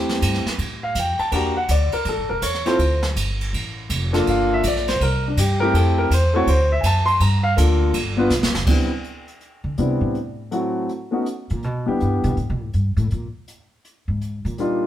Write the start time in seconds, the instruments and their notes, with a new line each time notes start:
Already playing: upright bass E2, grand piano A3 C4 E4 G4
0.09 snare
0.22 upright bass G2, kick, hi-hat pedal, ride
0.34 snare
0.45 muted upright bass stroke, snare
0.58 upright bass A2, kick, ride
0.83 grand piano F5
0.95 upright bass F2, kick, hi-hat pedal, ride
0.99 grand piano G5
1.19 grand piano A5, muted upright bass stroke, ride
1.31 upright bass E2, grand piano A#3 D4 F#4 G4 A5, kick, ride
1.36 grand piano A#5
1.57 grand piano F#5
1.69 upright bass D2, grand piano D5, kick, hi-hat pedal, ride
1.92 grand piano A#4, muted upright bass stroke, ride
2.05 upright bass A1, grand piano A4, kick, ride
2.17 upright bass G1
2.29 upright bass E1, grand piano A#4
2.42 upright bass E2, grand piano C#5, kick, hi-hat pedal, ride
2.54 snare
2.65 grand piano C4 E4 F4 A4 C5, snare, ride
2.79 upright bass D2, kick, ride
3.03 snare
3.16 upright bass G1, kick, hi-hat pedal, ride
3.41 ride
3.53 upright bass A1, kick, ride
3.90 upright bass F1, kick, hi-hat pedal, ride
4.13 grand piano A#3 D4 F4 A4, snare, ride
4.26 upright bass G1, grand piano F5, kick, ride
4.53 grand piano E5
4.63 upright bass A#1, kick, hi-hat pedal, ride
4.68 grand piano D5
4.77 snare
4.88 grand piano C5, snare, ride
5.00 upright bass C2, grand piano A#4, kick, ride
5.28 grand piano D4
5.37 upright bass G2, grand piano G4, kick, hi-hat pedal, ride
5.60 grand piano A3 C4 E4 G4 A#4
5.74 upright bass F2, grand piano A4, kick, ride
5.98 grand piano A#4
6.10 upright bass E2, grand piano C5, kick, hi-hat pedal, ride
6.34 grand piano A3 C4 E4 F#4 C#5
6.47 upright bass D2, grand piano C5, kick, ride
6.72 grand piano E5
6.81 upright bass F#2, grand piano G#5, kick, hi-hat pedal, ride
6.86 grand piano A5
7.06 grand piano C6, ride
7.20 upright bass G2, grand piano A#5, kick, ride
7.43 grand piano F5
7.56 upright bass D2, grand piano A#3 D4 F4 A4, kick, hi-hat pedal, ride
7.93 upright bass G1, kick, ride
8.17 grand piano B3 D4 F4 B4
8.30 upright bass B1, snare, hi-hat pedal
8.42 upright bass G1, snare
8.54 upright bass F1, snare
8.67 grand piano G3 B3 C4 D4 E4, kick, crash
9.04 closed hi-hat
9.28 closed hi-hat
9.41 closed hi-hat
9.64 upright bass D3
9.78 upright bass C3, grand piano G3 B3 C4 D4 E4, closed hi-hat
10.01 upright bass A2
10.15 closed hi-hat
10.51 grand piano F#3 A3 C4 E4 F#4, closed hi-hat
10.89 closed hi-hat
11.11 grand piano A3 B3 C#4 D#4 F#4
11.26 closed hi-hat
11.50 upright bass A#2, closed hi-hat
11.63 upright bass B2, closed hi-hat
11.86 upright bass D2, grand piano G3 B3 D4 E4 G4
12.00 upright bass G2, closed hi-hat
12.24 upright bass B2, closed hi-hat
12.37 upright bass A2, closed hi-hat
12.50 upright bass B2
12.62 upright bass A2
12.73 upright bass G2, closed hi-hat
12.97 upright bass A2, closed hi-hat
13.11 upright bass A#2, closed hi-hat
13.48 closed hi-hat
13.85 closed hi-hat
14.08 upright bass G#2
14.21 closed hi-hat
14.45 upright bass A#2, closed hi-hat
14.58 grand piano G3 A#3 D4 D#4 F4, closed hi-hat